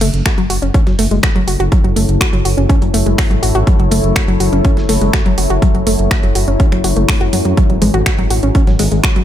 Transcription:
Already playing: F#2 E4 A4
0.01 F#1 A3, closed hi-hat, open hi-hat
0.14 F#1, closed hi-hat
0.18 C#5
0.26 F#4, finger snap, kick, snare, closed hi-hat
0.38 F#1 F#3, closed hi-hat
0.50 F#1 F#4, closed hi-hat, open hi-hat
0.62 F#1 C#4, closed hi-hat
0.74 C#4, kick, closed hi-hat
0.87 F#1 F#3, snare, closed hi-hat
0.99 F#1 A3, open hi-hat
1.11 F#1 G#3, closed hi-hat
1.23 F#4, finger snap, kick, snare, closed hi-hat
1.36 F#1 F#3, closed hi-hat
1.48 F#1 F#4, closed hi-hat, open hi-hat
1.60 F#1 F#4, closed hi-hat
1.72 F#3, kick, closed hi-hat
1.84 F#1 F#3, closed hi-hat
1.96 F#1 A3, closed hi-hat, open hi-hat
2.09 F#1, closed hi-hat
2.21 F#4, finger snap, kick, snare, closed hi-hat
2.33 F#1 F#3, closed hi-hat
2.45 F#1 F#4, closed hi-hat, open hi-hat
2.57 F#1 C#4, closed hi-hat
2.69 C#4, kick, closed hi-hat
2.82 F#1 F#3, closed hi-hat
2.94 F#1 A3, closed hi-hat, open hi-hat
3.06 F#1 G#3, closed hi-hat
3.18 F#4, finger snap, kick, snare, closed hi-hat, open hi-hat
3.31 G#1 F#3, closed hi-hat
3.43 G#1 F#4, closed hi-hat, open hi-hat
3.55 G#1 F#4, closed hi-hat
3.67 F#3, kick, closed hi-hat
3.79 F#1 F#3, closed hi-hat
3.91 F#1 A3, closed hi-hat, open hi-hat
4.04 F#1, closed hi-hat
4.16 F#4, finger snap, kick, snare, closed hi-hat
4.28 F#1 F#3, closed hi-hat
4.40 F#1 F#4, closed hi-hat, open hi-hat
4.53 F#1 C#4, closed hi-hat
4.64 C#4, kick, closed hi-hat
4.77 F#1 F#3, snare, closed hi-hat
4.89 F#1 A3, open hi-hat
5.01 F#1 G#3, closed hi-hat
5.13 F#4, finger snap, kick, snare, closed hi-hat
5.26 F#1 F#3, closed hi-hat
5.38 F#1 F#4, closed hi-hat, open hi-hat
5.50 F#1 F#4, closed hi-hat
5.62 F#3, kick, closed hi-hat
5.75 F#1 F#3, closed hi-hat
5.87 F#1 A3, closed hi-hat, open hi-hat
5.99 F#1, closed hi-hat
6.11 F#4, finger snap, kick, snare, closed hi-hat
6.23 F#1 F#3, closed hi-hat
6.35 F#1 F#4, closed hi-hat, open hi-hat
6.48 F#1 C#4, closed hi-hat
6.60 C#4, kick, closed hi-hat
6.72 F#1 F#3, finger snap, closed hi-hat
6.84 F#1 F#4, closed hi-hat, open hi-hat
6.96 F#1 A3, closed hi-hat
7.09 A3, finger snap, kick, snare, closed hi-hat, open hi-hat
7.21 F#2 F#4, closed hi-hat
7.33 F#2 F#3, closed hi-hat, open hi-hat
7.45 F#2 F#3, closed hi-hat
7.57 F#3 F#4, kick, closed hi-hat
7.70 G#1 F#3, closed hi-hat
7.82 G#1 G#3, closed hi-hat, open hi-hat, low conga
7.94 G#1 F#4, closed hi-hat
8.04 F#4 B4, finger snap, kick, snare, closed hi-hat
8.18 G#1 F#3, closed hi-hat
8.30 G#1 F#4, closed hi-hat, open hi-hat
8.43 G#1 C#4, closed hi-hat
8.50 D#5
8.55 C#4, kick, closed hi-hat
8.67 G#1 F#3, snare, closed hi-hat
8.79 G#1 G#3, open hi-hat
8.92 G#1 G#3, closed hi-hat
9.04 F#4, finger snap, kick, snare, closed hi-hat
9.16 G#1 F#3, closed hi-hat

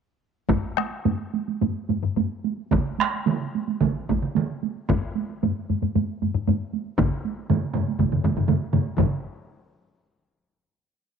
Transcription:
0.49 taiko, taiko low-mid, taiko high
0.63 taiko high
0.77 taiko rim, taiko high
0.91 taiko high
1.05 taiko low-mid, taiko high
1.19 taiko high
1.34 taiko high
1.48 taiko high
1.61 taiko low-mid, taiko high
1.75 taiko high
1.89 taiko low-mid, taiko high
2.03 taiko low-mid, taiko high
2.16 taiko low-mid, taiko high
2.30 taiko high
2.44 taiko high
2.58 taiko high
2.71 taiko, taiko mid, taiko high
2.99 taiko rim, taiko high
3.14 taiko high
3.26 taiko mid, taiko high
3.40 taiko high
3.55 taiko high
3.68 taiko high
3.81 taiko, taiko mid, taiko high
3.97 taiko high
4.09 taiko, taiko mid, taiko high
4.22 taiko mid, taiko high
4.35 taiko mid, taiko high
4.49 taiko high
4.63 taiko high
4.76 taiko high
4.89 taiko, taiko low-mid, taiko high
5.15 taiko high
5.29 taiko high
5.43 taiko low-mid, taiko high
5.56 taiko high
5.69 taiko low-mid, taiko high
5.82 taiko low-mid, taiko high
5.95 taiko low-mid, taiko high
6.09 taiko high
6.22 taiko low-mid, taiko high
6.34 taiko low-mid
6.47 taiko low-mid, taiko high
6.60 taiko high
6.73 taiko high
6.86 taiko high
6.98 taiko, taiko low-mid, taiko mid, taiko high
7.12 taiko high
7.25 taiko high
7.38 taiko high
7.50 taiko low-mid, taiko mid, taiko high
7.63 taiko high
7.74 taiko low-mid, taiko mid, taiko high
7.88 taiko high
7.99 taiko, taiko low-mid, taiko mid, taiko high
8.12 taiko low-mid, taiko mid, taiko high
8.24 taiko, taiko low-mid, taiko mid, taiko high
8.37 taiko low-mid, taiko mid, taiko high
8.48 taiko low-mid, taiko mid, taiko high
8.61 taiko high
8.73 taiko low-mid, taiko mid, taiko high
8.86 taiko high
8.97 taiko, taiko low-mid, taiko mid, taiko high

